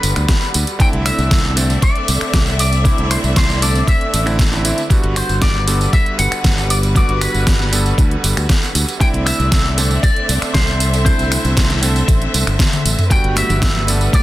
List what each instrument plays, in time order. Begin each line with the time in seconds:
Already playing: electric grand piano D3 G3 B3 A4, string section G3 F#4 B4, clean electric guitar B4
0.03 fingered electric bass G1, open hi-hat, tambourine
0.16 fingered electric bass D2, finger snap, closed hi-hat, tambourine
0.28 kick, snare, closed hi-hat, tambourine
0.42 tambourine
0.54 fingered electric bass D2, open hi-hat, tambourine
0.67 closed hi-hat, tambourine
0.79 electric grand piano D3 A3 C4 E4, string section C4 A4 D5 E5, clean electric guitar G5, muted fingered electric bass stroke, kick, closed hi-hat, tambourine
0.93 fingered electric bass C2, closed hi-hat
1.06 clean electric guitar E5, finger snap, open hi-hat, tambourine
1.18 fingered electric bass C2, closed hi-hat, tambourine
1.31 kick, snare, closed hi-hat, tambourine
1.56 electric grand piano D3 A3 C4 A4, open hi-hat, tambourine
1.70 closed hi-hat, tambourine
1.82 clean electric guitar D5, kick, closed hi-hat, tambourine
1.96 closed hi-hat
2.08 fingered electric bass C2, open hi-hat, tambourine
2.21 finger snap, muted fingered electric bass stroke, closed hi-hat, tambourine
2.33 fingered electric bass C2, kick, snare, closed hi-hat, tambourine
2.47 tambourine
2.59 clean electric guitar D5, open hi-hat, tambourine
2.73 closed hi-hat, tambourine
2.84 electric grand piano D3 A3 C4 E4, kick, closed hi-hat, tambourine
2.98 fingered electric bass C2, closed hi-hat
3.11 clean electric guitar C5, finger snap, open hi-hat, tambourine
3.24 fingered electric bass C2, closed hi-hat, tambourine
3.36 clean electric guitar C5, kick, snare, closed hi-hat, tambourine
3.50 snare, tambourine
3.61 electric grand piano D3 A3 C4 A4, clean electric guitar D5, open hi-hat, tambourine
3.75 closed hi-hat, tambourine
3.88 clean electric guitar E5, kick, closed hi-hat, tambourine
4.01 closed hi-hat
4.14 fingered electric bass A1, open hi-hat, tambourine
4.26 electric grand piano D3 A3 C4 E4, finger snap, closed hi-hat, tambourine
4.39 kick, snare, closed hi-hat, tambourine
4.52 electric grand piano D3 A3 C4 E4, tambourine
4.64 electric grand piano D3 A3 C4 E4, open hi-hat, tambourine
4.78 closed hi-hat, tambourine
4.90 electric grand piano D3 G3 B3 F#4, string section G3 F#4 B4, muted fingered electric bass stroke, kick, closed hi-hat, tambourine
5.04 fingered electric bass G1, closed hi-hat
5.16 clean electric guitar C5, finger snap, open hi-hat, tambourine
5.29 fingered electric bass G1, closed hi-hat, tambourine
5.42 clean electric guitar D5, kick, snare, closed hi-hat, tambourine
5.67 electric grand piano D3 G3 B3 A4, open hi-hat, tambourine
5.81 closed hi-hat, tambourine
5.93 clean electric guitar E5, kick, closed hi-hat, tambourine
6.06 closed hi-hat
6.19 fingered electric bass G1, clean electric guitar F#5, open hi-hat, tambourine
6.32 finger snap, muted fingered electric bass stroke, closed hi-hat, tambourine
6.44 fingered electric bass G1, kick, snare, closed hi-hat, tambourine
6.58 tambourine
6.70 clean electric guitar D5, open hi-hat, tambourine
6.83 closed hi-hat, tambourine
6.95 electric grand piano D3 G3 B3 F#4, clean electric guitar D5, kick, closed hi-hat, tambourine
7.09 fingered electric bass G1, closed hi-hat
7.21 clean electric guitar B4, finger snap, open hi-hat, tambourine
7.34 fingered electric bass G1, closed hi-hat, tambourine
7.47 kick, snare, closed hi-hat, tambourine
7.60 snare
7.72 electric grand piano D3 G3 B3 A4, open hi-hat, tambourine
7.86 closed hi-hat, tambourine
7.98 fingered electric bass D2, kick, closed hi-hat, tambourine
8.11 closed hi-hat
8.24 fingered electric bass G1, open hi-hat, tambourine
8.37 fingered electric bass D2, finger snap, closed hi-hat, tambourine
8.49 kick, snare, closed hi-hat, tambourine
8.63 tambourine
8.75 fingered electric bass D2, open hi-hat, tambourine
8.89 closed hi-hat, tambourine
9.00 electric grand piano D3 A3 C4 E4, string section C4 A4 D5 E5, clean electric guitar G5, muted fingered electric bass stroke, kick, closed hi-hat, tambourine
9.14 fingered electric bass C2, closed hi-hat
9.26 clean electric guitar E5, finger snap, open hi-hat, tambourine
9.39 fingered electric bass C2, closed hi-hat, tambourine
9.52 kick, snare, closed hi-hat, tambourine
9.77 electric grand piano D3 A3 C4 A4, open hi-hat, tambourine
9.91 closed hi-hat, tambourine
10.03 clean electric guitar D5, kick, closed hi-hat, tambourine
10.16 closed hi-hat
10.29 fingered electric bass C2, open hi-hat, tambourine
10.42 finger snap, muted fingered electric bass stroke, closed hi-hat, tambourine
10.54 fingered electric bass C2, clean electric guitar C5, kick, snare, closed hi-hat, tambourine
10.68 tambourine
10.80 open hi-hat, tambourine
10.94 closed hi-hat, tambourine
11.05 electric grand piano D3 A3 C4 E4, clean electric guitar C5, string section C5, kick, closed hi-hat, tambourine
11.19 fingered electric bass C2, closed hi-hat, tambourine
11.32 finger snap, open hi-hat, tambourine
11.45 fingered electric bass C2, closed hi-hat, tambourine
11.57 kick, snare, closed hi-hat, tambourine
11.70 snare, closed hi-hat
11.81 electric grand piano D3 A3 C4 A4, open hi-hat, tambourine
11.96 closed hi-hat, tambourine
12.08 fingered electric bass A1, kick, closed hi-hat, tambourine
12.22 closed hi-hat
12.34 fingered electric bass C2, open hi-hat, tambourine
12.47 fingered electric bass G1, finger snap, closed hi-hat, tambourine
12.59 kick, snare, closed hi-hat, high tom, tambourine
12.73 closed hi-hat, high tom, tambourine
12.85 fingered electric bass A1, open hi-hat, tambourine
12.99 closed hi-hat, mid tom, tambourine
13.10 electric grand piano D3 G3 B3 F#4, string section G3 F#4 B4, clean electric guitar G5, muted fingered electric bass stroke, kick, closed hi-hat, tambourine
13.24 fingered electric bass G1, closed hi-hat
13.36 clean electric guitar E5, finger snap, open hi-hat, tambourine, high conga
13.49 fingered electric bass G1, closed hi-hat, tambourine, muted conga, low conga
13.62 kick, snare, closed hi-hat, tambourine
13.75 high conga, low conga
13.87 electric grand piano D3 G3 B3 A4, open hi-hat, tambourine, muted conga
14.01 closed hi-hat, tambourine
14.13 clean electric guitar D5, kick, closed hi-hat, tambourine, high conga